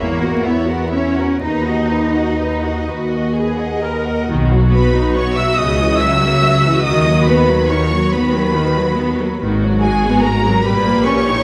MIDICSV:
0, 0, Header, 1, 6, 480
1, 0, Start_track
1, 0, Key_signature, 5, "major"
1, 0, Tempo, 955414
1, 711, Time_signature, 6, 3, 24, 8
1, 2157, Tempo, 852273
1, 5037, Tempo, 834492
1, 6203, End_track
2, 0, Start_track
2, 0, Title_t, "Violin section"
2, 0, Program_c, 0, 48
2, 0, Note_on_c, 0, 76, 52
2, 98, Note_off_c, 0, 76, 0
2, 105, Note_on_c, 0, 78, 49
2, 221, Note_on_c, 0, 76, 57
2, 224, Note_off_c, 0, 78, 0
2, 342, Note_off_c, 0, 76, 0
2, 344, Note_on_c, 0, 78, 53
2, 460, Note_on_c, 0, 76, 52
2, 464, Note_off_c, 0, 78, 0
2, 575, Note_off_c, 0, 76, 0
2, 586, Note_on_c, 0, 78, 47
2, 710, Note_off_c, 0, 78, 0
2, 717, Note_on_c, 0, 75, 53
2, 830, Note_off_c, 0, 75, 0
2, 832, Note_on_c, 0, 78, 46
2, 954, Note_on_c, 0, 75, 50
2, 958, Note_off_c, 0, 78, 0
2, 1075, Note_on_c, 0, 78, 47
2, 1080, Note_off_c, 0, 75, 0
2, 1200, Note_on_c, 0, 75, 44
2, 1202, Note_off_c, 0, 78, 0
2, 1316, Note_off_c, 0, 75, 0
2, 1319, Note_on_c, 0, 78, 44
2, 1428, Note_on_c, 0, 75, 47
2, 1443, Note_off_c, 0, 78, 0
2, 1554, Note_on_c, 0, 78, 42
2, 1558, Note_off_c, 0, 75, 0
2, 1670, Note_on_c, 0, 75, 44
2, 1680, Note_off_c, 0, 78, 0
2, 1789, Note_off_c, 0, 75, 0
2, 1790, Note_on_c, 0, 78, 47
2, 1907, Note_on_c, 0, 75, 47
2, 1918, Note_off_c, 0, 78, 0
2, 2032, Note_on_c, 0, 78, 44
2, 2035, Note_off_c, 0, 75, 0
2, 2152, Note_off_c, 0, 78, 0
2, 2397, Note_on_c, 0, 83, 73
2, 2628, Note_off_c, 0, 83, 0
2, 2637, Note_on_c, 0, 85, 80
2, 2755, Note_on_c, 0, 88, 87
2, 2760, Note_off_c, 0, 85, 0
2, 2871, Note_on_c, 0, 87, 89
2, 2882, Note_off_c, 0, 88, 0
2, 3102, Note_on_c, 0, 88, 93
2, 3118, Note_off_c, 0, 87, 0
2, 3588, Note_on_c, 0, 87, 90
2, 3590, Note_off_c, 0, 88, 0
2, 3823, Note_on_c, 0, 83, 80
2, 3829, Note_off_c, 0, 87, 0
2, 4067, Note_on_c, 0, 85, 90
2, 4073, Note_off_c, 0, 83, 0
2, 4316, Note_off_c, 0, 85, 0
2, 4320, Note_on_c, 0, 83, 79
2, 5039, Note_off_c, 0, 83, 0
2, 5271, Note_on_c, 0, 80, 84
2, 5499, Note_off_c, 0, 80, 0
2, 5507, Note_on_c, 0, 82, 82
2, 5752, Note_off_c, 0, 82, 0
2, 5755, Note_on_c, 0, 83, 85
2, 5993, Note_on_c, 0, 85, 95
2, 5996, Note_off_c, 0, 83, 0
2, 6203, Note_off_c, 0, 85, 0
2, 6203, End_track
3, 0, Start_track
3, 0, Title_t, "Violin section"
3, 0, Program_c, 1, 48
3, 0, Note_on_c, 1, 73, 56
3, 100, Note_off_c, 1, 73, 0
3, 114, Note_on_c, 1, 70, 55
3, 226, Note_on_c, 1, 73, 52
3, 229, Note_off_c, 1, 70, 0
3, 342, Note_on_c, 1, 70, 50
3, 344, Note_off_c, 1, 73, 0
3, 463, Note_off_c, 1, 70, 0
3, 467, Note_on_c, 1, 73, 49
3, 579, Note_off_c, 1, 73, 0
3, 595, Note_on_c, 1, 70, 49
3, 715, Note_off_c, 1, 70, 0
3, 716, Note_on_c, 1, 71, 59
3, 830, Note_off_c, 1, 71, 0
3, 835, Note_on_c, 1, 75, 49
3, 960, Note_off_c, 1, 75, 0
3, 963, Note_on_c, 1, 71, 44
3, 1085, Note_off_c, 1, 71, 0
3, 1085, Note_on_c, 1, 75, 49
3, 1207, Note_off_c, 1, 75, 0
3, 1208, Note_on_c, 1, 71, 49
3, 1320, Note_off_c, 1, 71, 0
3, 1332, Note_on_c, 1, 75, 44
3, 1450, Note_off_c, 1, 75, 0
3, 1457, Note_on_c, 1, 71, 44
3, 1562, Note_on_c, 1, 75, 44
3, 1572, Note_off_c, 1, 71, 0
3, 1684, Note_off_c, 1, 75, 0
3, 1688, Note_on_c, 1, 71, 44
3, 1799, Note_off_c, 1, 71, 0
3, 1803, Note_on_c, 1, 75, 44
3, 1924, Note_on_c, 1, 71, 42
3, 1925, Note_off_c, 1, 75, 0
3, 2043, Note_off_c, 1, 71, 0
3, 2044, Note_on_c, 1, 75, 44
3, 2158, Note_off_c, 1, 75, 0
3, 2403, Note_on_c, 1, 71, 64
3, 2631, Note_off_c, 1, 71, 0
3, 2641, Note_on_c, 1, 73, 72
3, 2756, Note_on_c, 1, 76, 73
3, 2765, Note_off_c, 1, 73, 0
3, 2873, Note_on_c, 1, 75, 79
3, 2882, Note_off_c, 1, 76, 0
3, 3110, Note_on_c, 1, 76, 77
3, 3120, Note_off_c, 1, 75, 0
3, 3592, Note_on_c, 1, 75, 80
3, 3594, Note_off_c, 1, 76, 0
3, 3832, Note_off_c, 1, 75, 0
3, 3845, Note_on_c, 1, 71, 66
3, 4073, Note_on_c, 1, 73, 76
3, 4079, Note_off_c, 1, 71, 0
3, 4319, Note_off_c, 1, 73, 0
3, 4321, Note_on_c, 1, 71, 65
3, 5039, Note_off_c, 1, 71, 0
3, 5277, Note_on_c, 1, 68, 69
3, 5502, Note_off_c, 1, 68, 0
3, 5504, Note_on_c, 1, 70, 79
3, 5750, Note_off_c, 1, 70, 0
3, 5755, Note_on_c, 1, 71, 75
3, 5990, Note_on_c, 1, 73, 84
3, 5996, Note_off_c, 1, 71, 0
3, 6203, Note_off_c, 1, 73, 0
3, 6203, End_track
4, 0, Start_track
4, 0, Title_t, "Viola section"
4, 0, Program_c, 2, 48
4, 0, Note_on_c, 2, 64, 58
4, 102, Note_off_c, 2, 64, 0
4, 110, Note_on_c, 2, 66, 55
4, 227, Note_off_c, 2, 66, 0
4, 228, Note_on_c, 2, 64, 52
4, 344, Note_on_c, 2, 66, 53
4, 345, Note_off_c, 2, 64, 0
4, 461, Note_on_c, 2, 64, 50
4, 464, Note_off_c, 2, 66, 0
4, 576, Note_off_c, 2, 64, 0
4, 584, Note_on_c, 2, 66, 51
4, 709, Note_off_c, 2, 66, 0
4, 710, Note_on_c, 2, 63, 55
4, 827, Note_off_c, 2, 63, 0
4, 834, Note_on_c, 2, 66, 49
4, 959, Note_off_c, 2, 66, 0
4, 962, Note_on_c, 2, 63, 50
4, 1081, Note_on_c, 2, 66, 48
4, 1085, Note_off_c, 2, 63, 0
4, 1205, Note_off_c, 2, 66, 0
4, 1205, Note_on_c, 2, 63, 48
4, 1319, Note_off_c, 2, 63, 0
4, 1331, Note_on_c, 2, 66, 47
4, 1448, Note_off_c, 2, 66, 0
4, 1454, Note_on_c, 2, 66, 59
4, 1673, Note_off_c, 2, 66, 0
4, 1690, Note_on_c, 2, 68, 62
4, 1928, Note_off_c, 2, 68, 0
4, 1928, Note_on_c, 2, 70, 56
4, 2158, Note_on_c, 2, 51, 65
4, 2159, Note_on_c, 2, 66, 68
4, 2160, Note_off_c, 2, 70, 0
4, 2274, Note_off_c, 2, 51, 0
4, 2288, Note_on_c, 2, 54, 60
4, 2409, Note_off_c, 2, 54, 0
4, 2411, Note_on_c, 2, 59, 58
4, 2532, Note_off_c, 2, 59, 0
4, 2537, Note_on_c, 2, 63, 57
4, 2650, Note_on_c, 2, 59, 56
4, 2654, Note_off_c, 2, 63, 0
4, 2770, Note_off_c, 2, 59, 0
4, 2781, Note_on_c, 2, 54, 61
4, 2889, Note_on_c, 2, 49, 57
4, 2894, Note_off_c, 2, 54, 0
4, 3000, Note_off_c, 2, 49, 0
4, 3009, Note_on_c, 2, 52, 56
4, 3125, Note_on_c, 2, 54, 57
4, 3128, Note_off_c, 2, 52, 0
4, 3246, Note_off_c, 2, 54, 0
4, 3249, Note_on_c, 2, 58, 57
4, 3362, Note_on_c, 2, 54, 57
4, 3367, Note_off_c, 2, 58, 0
4, 3482, Note_off_c, 2, 54, 0
4, 3489, Note_on_c, 2, 52, 60
4, 3604, Note_on_c, 2, 51, 66
4, 3606, Note_off_c, 2, 52, 0
4, 3714, Note_off_c, 2, 51, 0
4, 3726, Note_on_c, 2, 54, 61
4, 3841, Note_on_c, 2, 59, 63
4, 3844, Note_off_c, 2, 54, 0
4, 3962, Note_off_c, 2, 59, 0
4, 3965, Note_on_c, 2, 54, 58
4, 4084, Note_off_c, 2, 54, 0
4, 4085, Note_on_c, 2, 51, 56
4, 4204, Note_off_c, 2, 51, 0
4, 4208, Note_on_c, 2, 54, 59
4, 4326, Note_off_c, 2, 54, 0
4, 4330, Note_on_c, 2, 59, 64
4, 4447, Note_off_c, 2, 59, 0
4, 4448, Note_on_c, 2, 54, 65
4, 4560, Note_on_c, 2, 51, 61
4, 4565, Note_off_c, 2, 54, 0
4, 4681, Note_off_c, 2, 51, 0
4, 4686, Note_on_c, 2, 54, 63
4, 4803, Note_off_c, 2, 54, 0
4, 4803, Note_on_c, 2, 59, 58
4, 4922, Note_off_c, 2, 59, 0
4, 4930, Note_on_c, 2, 54, 59
4, 5018, Note_off_c, 2, 66, 0
4, 5045, Note_off_c, 2, 54, 0
4, 5050, Note_on_c, 2, 51, 65
4, 5052, Note_on_c, 2, 66, 68
4, 5159, Note_off_c, 2, 51, 0
4, 5173, Note_on_c, 2, 54, 64
4, 5287, Note_on_c, 2, 56, 61
4, 5289, Note_off_c, 2, 54, 0
4, 5406, Note_off_c, 2, 56, 0
4, 5413, Note_on_c, 2, 59, 68
4, 5526, Note_on_c, 2, 56, 64
4, 5527, Note_off_c, 2, 59, 0
4, 5642, Note_on_c, 2, 54, 67
4, 5643, Note_off_c, 2, 56, 0
4, 5751, Note_off_c, 2, 66, 0
4, 5760, Note_off_c, 2, 54, 0
4, 5760, Note_on_c, 2, 55, 63
4, 5766, Note_on_c, 2, 67, 67
4, 5870, Note_off_c, 2, 55, 0
4, 5874, Note_on_c, 2, 58, 67
4, 5992, Note_on_c, 2, 61, 65
4, 5996, Note_off_c, 2, 58, 0
4, 6115, Note_on_c, 2, 63, 65
4, 6116, Note_off_c, 2, 61, 0
4, 6203, Note_off_c, 2, 63, 0
4, 6203, Note_off_c, 2, 67, 0
4, 6203, End_track
5, 0, Start_track
5, 0, Title_t, "Cello section"
5, 0, Program_c, 3, 48
5, 0, Note_on_c, 3, 58, 91
5, 225, Note_off_c, 3, 58, 0
5, 227, Note_on_c, 3, 59, 80
5, 464, Note_off_c, 3, 59, 0
5, 468, Note_on_c, 3, 61, 81
5, 713, Note_off_c, 3, 61, 0
5, 715, Note_on_c, 3, 63, 77
5, 1435, Note_off_c, 3, 63, 0
5, 2158, Note_on_c, 3, 47, 72
5, 2769, Note_off_c, 3, 47, 0
5, 2895, Note_on_c, 3, 49, 77
5, 3487, Note_off_c, 3, 49, 0
5, 3613, Note_on_c, 3, 51, 75
5, 4208, Note_off_c, 3, 51, 0
5, 4328, Note_on_c, 3, 51, 77
5, 4923, Note_off_c, 3, 51, 0
5, 5044, Note_on_c, 3, 44, 76
5, 5642, Note_off_c, 3, 44, 0
5, 5770, Note_on_c, 3, 46, 86
5, 6203, Note_off_c, 3, 46, 0
5, 6203, End_track
6, 0, Start_track
6, 0, Title_t, "Double bass section"
6, 0, Program_c, 4, 48
6, 0, Note_on_c, 4, 40, 76
6, 620, Note_off_c, 4, 40, 0
6, 699, Note_on_c, 4, 39, 68
6, 1356, Note_off_c, 4, 39, 0
6, 1443, Note_on_c, 4, 39, 63
6, 2076, Note_off_c, 4, 39, 0
6, 2162, Note_on_c, 4, 35, 73
6, 2771, Note_off_c, 4, 35, 0
6, 2890, Note_on_c, 4, 37, 72
6, 3484, Note_off_c, 4, 37, 0
6, 3603, Note_on_c, 4, 39, 72
6, 4203, Note_off_c, 4, 39, 0
6, 4331, Note_on_c, 4, 39, 72
6, 4924, Note_off_c, 4, 39, 0
6, 5038, Note_on_c, 4, 32, 76
6, 5639, Note_off_c, 4, 32, 0
6, 5753, Note_on_c, 4, 34, 78
6, 6203, Note_off_c, 4, 34, 0
6, 6203, End_track
0, 0, End_of_file